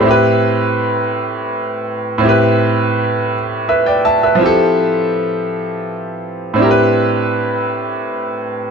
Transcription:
\new Staff \with { instrumentName = "Grand piano" } { \time 6/8 \key a \minor \tempo 4. = 55 << { c''16 r2 r8. | r2 <b' e''>16 <d'' g''>16 <e'' a''>16 <b' e''>16~ | <b' e''>16 r2 r8. | r2. | } \\ { <a, c' e' g' b'>2. | <a, c' e' g' b'>2. | <f c' e' g' a'>2. | <a, c' d' e' g' bes' b'>2. | } >> }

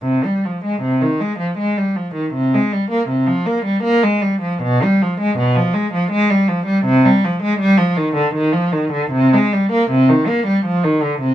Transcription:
\new Staff \with { instrumentName = "Cello" } { \clef bass \time 3/4 \key c \minor \tempo 4 = 80 c16 g16 f16 aes16 c16 ees16 aes16 f16 aes16 g16 f16 ees16 | c16 aes16 g16 bes16 c16 f16 bes16 g16 bes16 aes16 g16 f16 | b,16 g16 f16 aes16 b,16 f16 aes16 f16 aes16 g16 f16 g16 | c16 g16 f16 aes16 g16 f16 ees16 d16 ees16 f16 ees16 d16 |
\key aes \lydian c16 aes16 g16 bes16 c16 ees16 bes16 g16 f16 ees16 d16 c16 | }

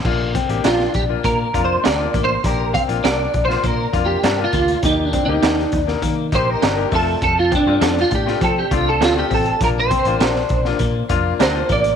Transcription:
<<
  \new Staff \with { instrumentName = "Clean electric guitar" } { \time 4/4 \key bes \major \tempo 4 = 100 r4 f'8 g'8 \tuplet 3/2 { bes'4 c''8 d''4 c''8 } | bes'8 f''8 \tuplet 3/2 { d''4 c''8 bes'4 g'8~ g'8 f'4 } | \tuplet 3/2 { ees'8 d'8 ees'8~ } ees'8. r8. c''16 bes'8. a'8 | a'16 f'16 d'8. f'16 g'8 a'16 g'16 f'16 a'16 f'16 g'16 a'8 |
bes'16 c''4. r4 r16 c''8 d''8 | }
  \new Staff \with { instrumentName = "Clean electric guitar" } { \time 4/4 \key bes \major r4 <d' f' bes'>8 r4. <d' f' bes'>8 r8 | r4 <d' f' bes'>8 r4. <d' f' bes'>8 r8 | r4 <ees' g' bes'>8 r4. <ees' g' bes'>8 r8 | r4 <c' f' a'>8 r4. <c' f' a'>8 r8 |
r4 <d' f' bes'>8 r4. <d' f' bes'>8 r8 | }
  \new Staff \with { instrumentName = "Grand piano" } { \time 4/4 \key bes \major <bes d' f'>8 r16 <bes d' g'>8 r8 <bes d' f'>8 r16 <bes d' f'>8 r16 <bes d' f'>8 r16 | <bes d' g'>8 r16 <bes d' f'>8 r8 <bes d' f'>8 r16 <bes d' f'>8 r16 <bes d' f'>8 r16 | <bes ees' g'>8 r16 <bes ees' g'>8 r8 <bes ees' bes'>8 r16 <bes ees' g'>8 r16 <bes ees' g'>16 <a c' f'>8~ | <a c' f'>8 r16 <a c' f'>8 r8 <a c' f'>8 r16 <a c' d'>8 r16 <a c' f'>8 r16 |
<bes d' f'>8 r16 <bes d' f'>8 r8 <bes d' f'>8 r16 <bes d' f'>8 r16 <bes d' f'>8 r16 | }
  \new Staff \with { instrumentName = "Clean electric guitar" } { \time 4/4 \key bes \major r8 c'8 d'4 bes8 f'8 d'8 bes8 | r8 c'8 d'4 bes8 f'8 d'8 bes8 | r8 c'8 d'4 bes8 ees'8 d'8 a8 | r8 c'8 d'4 c'8 f'8 d'8 c'8 |
r8 c'8 d'4 bes8 f'8 d'8 bes8 | }
  \new Staff \with { instrumentName = "Fingered electric bass" } { \clef bass \time 4/4 \key bes \major bes,,8. a,,16 bes,,8 bes,,8 bes,8 f,8 d,8 a,,8 | bes,,8. bes,,16 c,8 bes,,8 bes,8 f,8 g,8 d,8 | ees,8. d,16 ees,8 ees,8 ees8 bes,,8 g,,8 f,8 | f,8. g,16 f,8 a,8 f8 c,8 d,8 a,,8 |
bes,,8. a,,16 bes,,8 bes,,8 bes,8 f,8 d,8 a,,8 | }
  \new DrumStaff \with { instrumentName = "Drums" } \drummode { \time 4/4 <cymc bd>8 <hh bd>16 hh16 <hh sn>16 sn16 <hh bd>8 <hh bd>8 <hh bd>8 <hh sn>8 <hh bd>8 | <hh bd>8 <hh bd>16 hh16 <hh sn>8 <hh bd>16 sn16 <hh bd>8 <hh bd>8 <hh sn>8 <hh bd>16 hh16 | <hh bd>8 <hh bd>8 <hh sn>16 sn16 <hh bd>16 sn16 <hh bd>8 <hh bd>8 <hh sn>8 <hho bd>8 | <hh bd>8 <hh bd>8 <hh sn>16 sn16 <hh bd>16 sn16 <hh bd>8 <hh bd>8 <hh sn>8 <hho bd>16 hh16 |
<hh bd>8 <hh bd>16 hh16 <hh sn>16 sn16 <hh bd>16 sn16 <hh bd>8 <hh bd>8 <hh sn>8 <hh bd>16 hh16 | }
>>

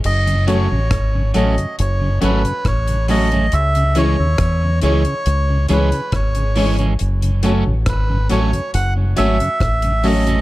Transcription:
<<
  \new Staff \with { instrumentName = "Melodica" } { \time 4/4 \key fis \dorian \tempo 4 = 69 dis''8 cis''4 dis''8 cis''8 b'8 cis''8 dis''8 | e''8 cis''4 cis''4 b'8 cis''8. r16 | r4 b'8 cis''8 fis''8 e''4 dis''8 | }
  \new Staff \with { instrumentName = "Upright piano" } { \time 4/4 \key fis \dorian r8 <cis' fis' a' cis''>16 r8. <cis' fis' a' cis''>16 r8. <cis' fis' a' cis''>16 r8. <cis' fis' a' cis''>16 r16 | r8 <cis' e' gis' cis''>16 r8. <cis' e' gis' cis''>16 r8. <cis' e' gis' cis''>16 r8 <gis' cis''>16 <cis' e' gis' cis''>16 r16 | r8 <cis' fis' a' cis''>16 r8. <cis' fis' a' cis''>16 r8. <cis' fis' a' cis''>16 r8. <cis' fis' a' cis''>16 r16 | }
  \new Staff \with { instrumentName = "Clean electric guitar" } { \time 4/4 \key fis \dorian r8 <fis a cis'>16 r8. <fis a cis'>16 r8. <fis a cis'>16 r8. <fis a cis'>16 <fis a cis'>16 | r8 <e gis cis'>16 r8. <e gis cis'>16 r8. <e gis cis'>16 r8. <e gis cis'>16 <e gis cis'>16 | r8 <fis a cis'>16 r8. <fis a cis'>16 r8. <fis a cis'>16 r8. <fis a cis'>16 <fis a cis'>16 | }
  \new Staff \with { instrumentName = "Tonewheel organ" } { \clef bass \time 4/4 \key fis \dorian << { r8 <fis a cis'>8 r8 <fis a cis'>8 r8 <fis a cis'>8 r8 <fis a cis'>8 | r8 <e gis cis'>8 r8 <e gis cis'>8 r8 <e gis cis'>8 r8 <e gis cis'>8 | r8 <fis a cis'>8 r8 <fis a cis'>8 r8 <fis a cis'>8 r8 <fis a cis'>8 | } \\ { r16 <fis, cis>16 r16 <fis, cis>16 r16 <fis, cis>16 r16 <fis, cis>16 r16 <fis, cis>16 r16 <fis, cis>16 r16 <fis, cis>16 r16 <fis, cis>16 | r16 cis16 r16 cis16 r16 cis16 r16 cis16 r16 cis16 r16 cis16 r16 cis16 r16 cis16 | r16 <fis, cis>16 r16 <fis, cis>16 r16 <fis, cis>16 r16 <fis, cis>16 r16 <fis, cis>16 r16 <fis, cis>16 r16 <fis, cis>16 r16 <fis, cis>16 | } >> }
  \new Staff \with { instrumentName = "Fingered electric bass" } { \clef bass \time 4/4 \key fis \dorian fis,,8. a,,16 gis,,8 a,,16 r16 fis,,8 gis,,16 r16 a,,4 | cis,8. dis,16 e,8 cis,16 r16 cis,8 cis,16 r16 gis,,4 | fis,,8. a,,16 gis,,8 a,,16 r16 fis,,8 gis,,16 r16 a,,4 | }
  \new DrumStaff \with { instrumentName = "Drums" } \drummode { \time 4/4 cymc16 hh16 hh8 <hh bd ss>8 hh16 hh16 hh8 hh16 hh16 <hh bd ss>16 hh16 hho16 hh16 | hh16 hh16 hh8 <hh bd ss>8 hh16 hh16 hh8 hh16 hh16 <hh bd ss>16 hh16 hho16 hh16 | hh16 hh16 hh8 <hh bd ss>8 hh16 hh16 hh8 hh16 hh16 <hh bd ss>16 hh16 hho16 hh16 | }
>>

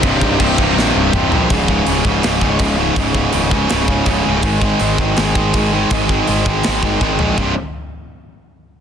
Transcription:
<<
  \new Staff \with { instrumentName = "Analog synth pad" } { \time 4/4 \key des \lydian \tempo 4 = 163 <ees' g' c'' g''>1 | r1 | r1 | r1 |
r1 | r1 | }
  \new Staff \with { instrumentName = "Distorted electric guitar" } { \clef bass \time 4/4 \key des \lydian <c, g, c g ees'>4. <c, g, c g ees'>2~ <c, g, c g ees'>8 | r1 | r1 | r1 |
r1 | r1 | }
  \new Staff \with { instrumentName = "Distorted electric guitar" } { \clef bass \time 4/4 \key des \lydian <c, g, c>4 <c, g, c>8 <c, g, c>8 <c, g, c>4 <c, g, c>8 <c, g, c>8 | <des, aes, des>8 <des, aes, des>8 <des, aes, des>8 <des, aes, des>8 <des, aes, des>8 <des, aes, des>8 <des, aes, des>8 <des, aes, des>8 | <des, aes, des>8 <des, aes, des>8 <des, aes, des>8 <des, aes, des>8 <des, aes, des>8 <des, aes, des>8 <des, aes, des>8 <des, aes, des>8 | <aes, ees aes>8 <aes, ees aes>8 <aes, ees aes>8 <aes, ees aes>8 <aes, ees aes>8 <aes, ees aes>8 <aes, ees aes>8 <aes, ees aes>8 |
<aes, ees aes>8 <aes, ees aes>8 <aes, ees aes>8 <aes, ees aes>8 <aes, ees aes>8 <aes, ees aes>8 <aes, ees aes>8 <aes, ees aes>8 | <c, g, c>8 r2. r8 | }
  \new Staff \with { instrumentName = "Distorted electric guitar" } { \clef bass \time 4/4 \key des \lydian <c, g, c>4 <c, g, c>8 <c, g, c>8 <c, g, c>4 <c, g, c>8 <c, g, c>8 | <des, aes, des>8 <des, aes, des>8 <des, aes, des>8 <des, aes, des>8 <des, aes, des>8 <des, aes, des>8 <des, aes, des>8 <des, aes, des>8 | <des, aes, des>8 <des, aes, des>8 <des, aes, des>8 <des, aes, des>8 <des, aes, des>8 <des, aes, des>8 <des, aes, des>8 <des, aes, des>8 | <aes, ees aes>8 <aes, ees aes>8 <aes, ees aes>8 <aes, ees aes>8 <aes, ees aes>8 <aes, ees aes>8 <aes, ees aes>8 <aes, ees aes>8 |
<aes, ees aes>8 <aes, ees aes>8 <aes, ees aes>8 <aes, ees aes>8 <aes, ees aes>8 <aes, ees aes>8 <aes, ees aes>8 <aes, ees aes>8 | <c, g, c>8 r2. r8 | }
  \new Staff \with { instrumentName = "Picked electric bass" } { \clef bass \time 4/4 \key des \lydian c,,8 c,,8 c,,8 c,,8 bes,,8 c,,8 c,,8 bes,,8 | des,,4 des,,8 des,,8 des,,8 des,,8 des,,4 | des,,4 des,,8 des,,8 des,,4 des,,8 des,,8 | aes,,4 aes,,8 aes,,8 aes,,8 aes,,8 aes,,4 |
aes,,4 aes,,8 aes,,8 aes,,4 aes,,8 bes,,8 | c,,8 r2. r8 | }
  \new DrumStaff \with { instrumentName = "Drums" } \drummode { \time 4/4 <cymc bd>8 bd8 <cymc bd>8 bd8 sn4 <bd toml>8 tomfh8 | <hho bd>8 bd8 hho8 bd8 <hho sn>8 bd8 <hho bd>4 | <hho bd>8 bd8 hho8 bd8 <hho sn>8 bd8 <hho bd>4 | <hho bd>8 bd8 hho8 bd8 <hho sn>8 bd8 <hho bd>4 |
<hho bd>8 bd8 hho8 bd8 <hho sn>8 bd8 bd8 tomfh8 | bd4 r4 r4 r4 | }
>>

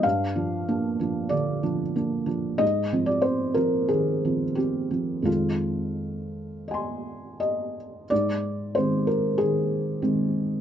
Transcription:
<<
  \new Staff \with { instrumentName = "Felt piano" } { \time 4/4 \key aes \lydian \tempo 4 = 92 << { r1 | r1 | r2 <ees'' aes'' c'''>2 | r1 | } \\ { f''2 d''8 r4. | ees''8. d''16 c''8 bes'8 aes'4 g'4 | f'2. ees''4 | d''4 c''8 bes'8 aes'2 | } >> }
  \new Staff \with { instrumentName = "Felt piano" } { \clef bass \time 4/4 \key aes \lydian g,8 <f d'>8 <bes d'>8 <f d'>8 d8 <f d'>8 <bes d'>8 <f d'>8 | aes,8 <f c'>8 c'8 <f c'>8 ees8 <f c'>8 c'8 <f c'>8 | <f, ees aes c'>1 | aes,4 <ees aes c'>4 ees4 <ees aes c'>4 | }
>>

